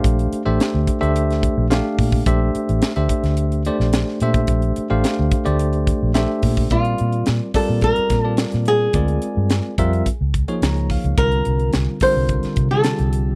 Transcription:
Already playing: tine electric piano A3 D4 G4 C5 F5
0.04 fingered electric bass A#1, kick, closed hi-hat
0.19 closed hi-hat
0.33 muted fingered electric bass stroke, closed hi-hat
0.45 fingered electric bass A1, tine electric piano A3 D4 G4 C5 E5
0.60 snare, closed hi-hat
0.74 fingered electric bass D2
0.87 muted fingered electric bass stroke, kick, closed hi-hat
1.01 fingered electric bass D2, tine electric piano A3 D4 G4 C5 E5, closed hi-hat
1.16 closed hi-hat
1.30 snare, closed hi-hat
1.43 kick, closed hi-hat
1.57 fingered electric bass A#1
1.70 tine electric piano A3 D4 G4 C5 F5, snare, closed hi-hat
1.99 fingered electric bass A#2, kick, open hi-hat
2.12 kick
2.26 fingered electric bass A#1, tine electric piano A3 D4 G4 C5 E5, kick, closed hi-hat
2.55 closed hi-hat
2.69 fingered electric bass A1, closed hi-hat
2.82 snare, closed hi-hat
2.96 fingered electric bass D2, tine electric piano A3 D4 G4 C5 E5, closed hi-hat
3.09 kick, closed hi-hat
3.23 fingered electric bass D2, snare, closed hi-hat
3.37 closed hi-hat
3.52 closed hi-hat
3.65 tine electric piano A3 D4 G4 C5 D5, closed hi-hat
3.80 fingered electric bass A#1, snare
3.93 snare, closed hi-hat
4.08 snare
4.20 fingered electric bass A#2, tine electric piano A3 D4 G4 C5 E5, closed hi-hat
4.34 kick, closed hi-hat
4.47 fingered electric bass A#1, kick, closed hi-hat
4.62 closed hi-hat
4.76 muted fingered electric bass stroke, closed hi-hat
4.90 fingered electric bass A1, tine electric piano A3 D4 G4 C5 F5
5.04 snare, closed hi-hat
5.19 fingered electric bass D2
5.31 muted fingered electric bass stroke, kick, closed hi-hat
5.45 fingered electric bass D2, tine electric piano A3 D4 G4 C5 D5, closed hi-hat
5.59 closed hi-hat
5.73 closed hi-hat
5.87 kick, closed hi-hat
6.03 fingered electric bass A#1
6.14 tine electric piano A3 D4 G4 C5 E5, snare, closed hi-hat
6.42 fingered electric bass A#2, kick, open hi-hat
6.57 kick
6.70 fingered electric bass A#2, tine electric piano G3 C4 F4 A#4 D5, nylon-string guitar F4, kick, closed hi-hat
6.85 closed hi-hat
6.98 fingered electric bass A#2, closed hi-hat
7.12 closed hi-hat
7.26 fingered electric bass A#2, snare, closed hi-hat
7.54 tine electric piano G3 C4 F4 A#4 D5, nylon-string guitar A4, muted fingered electric bass stroke, kick, open hi-hat
7.69 fingered electric bass A#2
7.81 nylon-string guitar A#4, kick, closed hi-hat
7.96 muted fingered electric bass stroke, closed hi-hat
8.10 fingered electric bass A#2, kick, snare, closed hi-hat
8.22 tine electric piano G3 C4 F4 A#4 D5, nylon-string guitar A4
8.37 snare, closed hi-hat
8.52 fingered electric bass A#2, snare, closed hi-hat
8.65 nylon-string guitar G#4, closed hi-hat
8.93 fingered electric bass D2, tine electric piano G#3 C4 F4 A#4 D5, kick, closed hi-hat
9.08 closed hi-hat
9.22 closed hi-hat
9.37 fingered electric bass G2
9.50 snare, closed hi-hat
9.78 fingered electric bass F2, tine electric piano G3 C4 F4 A#4 E5, kick, closed hi-hat
9.93 closed hi-hat
10.06 muted fingered electric bass stroke, kick, closed hi-hat
10.21 fingered electric bass C#2
10.34 kick, closed hi-hat
10.48 tine electric piano F3 A#3 D#4 G#4 C#5, closed hi-hat
10.62 fingered electric bass C#2, tine electric piano A#5, snare, closed hi-hat
10.76 closed hi-hat
10.90 tine electric piano F5, kick, open hi-hat
11.04 fingered electric bass C#2, closed hi-hat
11.18 fingered electric bass C2, tine electric piano D3 G3 C4 F4 A#4, nylon-string guitar A#4, kick, closed hi-hat
11.32 closed hi-hat
11.45 fingered electric bass C2, closed hi-hat
11.60 closed hi-hat
11.73 fingered electric bass C2, snare, closed hi-hat
12.00 tine electric piano D3 G3 C4 F4 A#4, nylon-string guitar C5, muted fingered electric bass stroke, kick, open hi-hat
12.17 fingered electric bass C2
12.29 kick, closed hi-hat
12.43 muted fingered electric bass stroke, snare, closed hi-hat
12.56 fingered electric bass C3, kick, closed hi-hat
12.71 tine electric piano D3 G3 C4 F4 G4, nylon-string guitar A4
12.84 snare, closed hi-hat
12.99 fingered electric bass C2, closed hi-hat
13.13 closed hi-hat

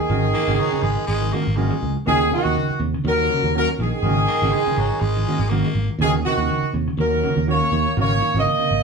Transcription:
Already playing: trombone D#3, horn section G#4
0.09 fingered electric bass G#1, clean electric guitar D#3 C#4 F#4, muted clean electric guitar stroke
0.34 clean electric guitar D#3, baritone saxophone A#3, muted clean electric guitar stroke
0.47 fingered electric bass G#1, clean electric guitar C#3 A#3 C#4 F#4
0.59 baritone saxophone F#3, muted clean electric guitar stroke
0.72 clean electric guitar C#3, muted clean electric guitar stroke, muted fingered electric bass stroke
0.82 fingered electric bass G#1, baritone saxophone G#3
0.97 muted clean electric guitar stroke
1.07 fingered electric bass G#1, baritone saxophone G#3
1.22 clean electric guitar D#3, muted clean electric guitar stroke
1.32 clean electric guitar D#3 G#3 A#3 C#4 F#4, baritone saxophone A#3
1.46 fingered electric bass G#1, muted clean electric guitar stroke
1.56 clean electric guitar D#3 A#3 C#4 F#4, baritone saxophone G#3
1.71 clean electric guitar G#3
1.82 fingered electric bass C#2, muted clean electric guitar stroke
1.96 muted clean electric guitar stroke
2.06 fingered electric bass D#2, clean electric guitar C#3 A#3 C#4 F#4, trombone D#3, horn section G#4
2.19 clean electric guitar D#3
2.30 clean electric guitar C3, trombone D#3, horn section F#4, muted clean electric guitar stroke
2.45 fingered electric bass D#2, clean electric guitar C#4 F#4
2.55 clean electric guitar C#3, muted clean electric guitar stroke
2.69 muted clean electric guitar stroke, muted fingered electric bass stroke
2.79 fingered electric bass D#2, clean electric guitar C3
2.94 clean electric guitar C#3, muted clean electric guitar stroke
3.04 fingered electric bass D#2, clean electric guitar D#3, trombone F#3, horn section A#4
3.19 muted clean electric guitar stroke
3.30 clean electric guitar C#3 A#3 C#4 F#4
3.43 fingered electric bass D#2, muted clean electric guitar stroke
3.55 trombone F#3, clean electric guitar A#3 C#4 F#4, horn section A#4
3.79 fingered electric bass A#1, clean electric guitar D#3, trombone D#3, horn section G#4, muted clean electric guitar stroke
3.94 muted clean electric guitar stroke
4.03 fingered electric bass G#1, clean electric guitar C#3 D#3 A#3 C#4 F#4
4.27 clean electric guitar D#3, baritone saxophone A#3, muted clean electric guitar stroke
4.42 fingered electric bass G#1, clean electric guitar C#3 A#3 C#4 F#4
4.52 baritone saxophone G#3, muted clean electric guitar stroke
4.67 clean electric guitar C#3, muted fingered electric bass stroke, muted clean electric guitar stroke
4.77 fingered electric bass G#1, baritone saxophone F#3
4.92 muted clean electric guitar stroke
5.01 fingered electric bass G#1, baritone saxophone G#3
5.16 clean electric guitar D#3, muted clean electric guitar stroke
5.27 clean electric guitar D#3 A#3 C#4 F#4, muted clean electric guitar stroke
5.39 fingered electric bass G#1, muted clean electric guitar stroke
5.50 clean electric guitar D#3 A#3 C#4 F#4, baritone saxophone A#3
5.66 clean electric guitar G#3
5.75 fingered electric bass G#1, muted clean electric guitar stroke
5.91 muted clean electric guitar stroke
5.99 fingered electric bass D#2, clean electric guitar C#3 D#3 A#3 C#4 F#4, horn section G#4
6.04 trombone D#3
6.14 clean electric guitar D#3
6.25 clean electric guitar C3, trombone D#3, horn section F#4, muted clean electric guitar stroke
6.37 fingered electric bass D#2, clean electric guitar A#3 C#4 F#4
6.49 clean electric guitar C#3, muted clean electric guitar stroke
6.62 muted fingered electric bass stroke, muted clean electric guitar stroke
6.73 fingered electric bass D#2, clean electric guitar C3
6.88 clean electric guitar C#3, muted clean electric guitar stroke
6.97 fingered electric bass D#2, clean electric guitar D#3, trombone F#3, horn section A#4
7.13 muted clean electric guitar stroke
7.24 clean electric guitar C#3 D#3 A#3 C#4 F#4
7.37 fingered electric bass D#2, muted clean electric guitar stroke
7.47 clean electric guitar D#3 A#3 C#4 F#4, horn section C#5
7.52 trombone A#3
7.72 fingered electric bass D#2, clean electric guitar D#3
7.86 muted clean electric guitar stroke
7.97 fingered electric bass G#1, clean electric guitar C#3 D#3 A#3 C#4 F#4, trombone A#3
8.01 horn section C#5
8.22 clean electric guitar D#3, muted clean electric guitar stroke
8.34 fingered electric bass G#1, clean electric guitar C#3 A#3 C#4 F#4
8.39 trombone A#3, horn section D#5
8.47 muted clean electric guitar stroke
8.59 clean electric guitar C#3, muted fingered electric bass stroke, muted clean electric guitar stroke
8.71 fingered electric bass G#1

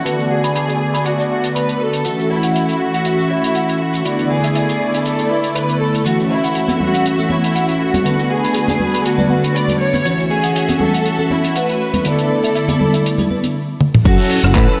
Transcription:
Already playing: string section A3, violin section F#4
0.05 analog polysynth D3 A3 B3 F#4, string section B3 D5, clean electric guitar B4, closed hi-hat, shaker
0.19 shaker
0.30 violin section G#4, clean electric guitar F#5
0.44 clean electric guitar B5, closed hi-hat, shaker
0.55 clean electric guitar B5, closed hi-hat, shaker
0.69 clean electric guitar D5, closed hi-hat, shaker
0.94 clean electric guitar B5, closed hi-hat, shaker
1.05 violin section F#4, closed hi-hat, shaker
1.19 clean electric guitar D5, shaker
1.30 violin section F#4, clean electric guitar F#5
1.44 closed hi-hat, shaker
1.55 violin section B4, clean electric guitar B5, closed hi-hat, shaker
1.69 closed hi-hat, shaker
1.81 violin section A4
1.93 closed hi-hat, shaker
2.04 analog polysynth E3 A3 C#4 F#4, string section A3 F#4 E5, clean electric guitar F#4, closed hi-hat, shaker
2.19 shaker
2.30 violin section E4, clean electric guitar C#5
2.43 clean electric guitar F#5, closed hi-hat, shaker
2.55 clean electric guitar F#5, closed hi-hat, shaker
2.69 clean electric guitar A4, closed hi-hat, shaker
2.80 violin section F#4
2.94 clean electric guitar F#5, closed hi-hat, shaker
3.05 closed hi-hat, shaker
3.19 clean electric guitar A4, shaker
3.30 violin section E4, clean electric guitar C#5
3.44 closed hi-hat, shaker
3.55 clean electric guitar F#5, closed hi-hat, shaker
3.69 closed hi-hat, shaker
3.81 violin section F#4
3.94 closed hi-hat, shaker
4.05 analog polysynth D3 A3 B3 E4, clean electric guitar E4, string section E4 D5, closed hi-hat, shaker
4.19 closed hi-hat, shaker
4.30 violin section G#4, clean electric guitar B4
4.44 clean electric guitar E5, closed hi-hat, shaker
4.55 clean electric guitar E5, closed hi-hat, shaker
4.69 clean electric guitar G#4, closed hi-hat, shaker
4.94 clean electric guitar E5, closed hi-hat, shaker
5.05 violin section A4, closed hi-hat, shaker
5.19 clean electric guitar G#4, closed hi-hat, shaker
5.30 violin section E4, clean electric guitar B4
5.44 closed hi-hat, shaker
5.55 violin section B4, clean electric guitar E5, closed hi-hat, shaker
5.69 closed hi-hat, shaker
5.81 violin section A4
5.95 closed hi-hat, shaker
6.05 analog polysynth E3 A3 C#4 F#4, violin section F#4, clean electric guitar F#4, string section F#4 E5, closed hi-hat, shaker
6.20 shaker
6.30 violin section E4, clean electric guitar C#5
6.44 clean electric guitar F#5, closed hi-hat, shaker
6.55 clean electric guitar F#5, closed hi-hat, shaker
6.68 clean electric guitar A4, closed hi-hat, muted conga, high conga, shaker
6.80 violin section F#4, low conga
6.94 clean electric guitar F#5, closed hi-hat, shaker
7.06 closed hi-hat, shaker
7.19 clean electric guitar A4, muted conga, shaker
7.30 violin section E4, clean electric guitar C#5, high conga
7.44 closed hi-hat, shaker
7.55 clean electric guitar F#5, closed hi-hat, shaker
7.69 closed hi-hat, shaker
7.81 violin section F#4
7.94 closed hi-hat, high conga, low conga, shaker
8.05 analog polysynth D3 A3 B3 F#4, string section D4 B4, clean electric guitar B4, closed hi-hat, shaker
8.19 shaker
8.30 violin section G#4, clean electric guitar F#5
8.44 clean electric guitar B5, closed hi-hat, shaker
8.54 clean electric guitar B5, closed hi-hat, shaker
8.68 clean electric guitar D5, closed hi-hat, muted conga, high conga, shaker
8.80 low conga
8.94 clean electric guitar B5, closed hi-hat, shaker
9.05 violin section F#4, closed hi-hat, shaker
9.18 clean electric guitar D5, low conga, shaker
9.30 violin section F#4, clean electric guitar F#5, high conga
9.44 closed hi-hat, muted conga, shaker
9.55 violin section D5, clean electric guitar B5, closed hi-hat, shaker
9.68 closed hi-hat, low conga, shaker
9.80 violin section C#5
9.94 closed hi-hat, muted conga, high conga, shaker
10.04 analog polysynth E3 A3 C#4 F#4, clean electric guitar F#4, string section F#4 E5, closed hi-hat, shaker
10.20 shaker
10.30 violin section G#4, clean electric guitar C#5
10.43 clean electric guitar F#5, closed hi-hat, shaker
10.55 clean electric guitar F#5, closed hi-hat, shaker
10.68 clean electric guitar A4, closed hi-hat, muted conga, high conga, shaker
10.80 violin section A4, low conga
10.94 clean electric guitar F#5, closed hi-hat, shaker
11.05 closed hi-hat, shaker
11.19 clean electric guitar A4, muted conga, shaker
11.30 violin section E4, clean electric guitar C#5, high conga
11.44 closed hi-hat, shaker
11.55 violin section B4, clean electric guitar F#5, closed hi-hat, shaker
11.69 closed hi-hat, shaker
11.94 closed hi-hat, high conga, low conga, shaker
12.05 analog polysynth D3 A3 B3 E4, clean electric guitar E4, string section E4 D5, violin section A4, closed hi-hat, shaker
12.19 closed hi-hat, shaker
12.30 clean electric guitar B4
12.44 clean electric guitar E5, closed hi-hat, shaker
12.55 clean electric guitar E5, closed hi-hat, shaker
12.68 clean electric guitar G#4, closed hi-hat, muted conga, high conga, shaker
12.80 low conga
12.94 clean electric guitar E5, closed hi-hat, shaker
13.06 closed hi-hat, shaker
13.18 clean electric guitar G#4, closed hi-hat, low conga, shaker
13.30 clean electric guitar B4, high conga
13.44 closed hi-hat, muted conga, shaker
13.81 high tom
13.95 mid tom
14.05 picked electric bass F#2, analog polysynth F#3 C#4 E4 A4, violin section F#4, clean electric guitar F#4, string section A4 F#5 E6, kick, closed hi-hat, crash, shaker
14.19 open hi-hat
14.30 clean electric guitar C#5, open hi-hat, shaker
14.44 picked electric bass F#1, analog polysynth F#3 C#4 E4 A4, clean electric guitar F#5, cross-stick, closed hi-hat, shaker
14.55 picked electric bass A2, violin section B4, clean electric guitar F#5, kick, clap, closed hi-hat, shaker
14.69 clean electric guitar A4

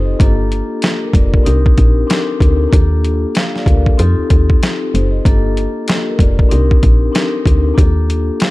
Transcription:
Already playing: fm bass F#1, vibraphone C4 D#4 F4 G4 A4 C5
0.05 vibraphone G4 D#5
0.19 fm bass G1, vibraphone A#3 D4 F4 G4 A4, kick, closed hi-hat
0.52 closed hi-hat
0.82 vibraphone A#3 G4, snare, closed hi-hat
1.03 vibraphone D4 A#4
1.13 fm bass F1, vibraphone F4 D5, kick, closed hi-hat
1.32 vibraphone D4 A#4, kick
1.44 fm bass C2, vibraphone C4 D4 D#4 G4 A#4, closed hi-hat
1.66 kick
1.78 fm bass A#1, kick, closed hi-hat
2.07 vibraphone C4 D4 D#4 G4 A4, snare, closed hi-hat
2.16 vibraphone A#4
2.40 fm bass D2, kick, closed hi-hat
2.69 fm bass D#2, vibraphone A#3 D4 F4 G4 A4, kick
2.73 closed hi-hat
3.05 closed hi-hat
3.35 vibraphone A4 F5, snare, closed hi-hat
3.54 vibraphone F4 D5, snare
3.66 fm bass D2, vibraphone D4 A#4, kick, closed hi-hat
3.86 vibraphone A4, kick
3.97 fm bass F2, vibraphone C4 D#4 F4 G4 A4, closed hi-hat
4.18 fm bass D#2
4.30 fm bass D#2, kick, closed hi-hat
4.50 kick
4.63 snare, closed hi-hat
4.81 vibraphone C4 A4
4.93 fm bass F#1, vibraphone D#4 C5, closed hi-hat
5.11 vibraphone G4 D#5
5.25 fm bass G1, vibraphone A#3 D4 F4 G4 A4, kick, closed hi-hat
5.57 closed hi-hat
5.87 vibraphone A#3 G4, snare, closed hi-hat
6.08 vibraphone D4 A#4
6.19 fm bass F1, vibraphone F4 D5, kick, closed hi-hat
6.37 vibraphone D4 A#4, kick
6.49 fm bass C2, vibraphone C4 D4 D#4 G4 A#4, closed hi-hat
6.71 kick
6.83 fm bass A#1, kick, closed hi-hat
7.12 vibraphone C4 D4 D#4 G4 A4, snare, closed hi-hat
7.22 vibraphone A#4
7.46 fm bass D2, kick, closed hi-hat
7.74 fm bass D#2, vibraphone A#3 D4 F4 G4 A4, kick
7.79 closed hi-hat
8.10 closed hi-hat
8.40 vibraphone A4 F5, snare, closed hi-hat

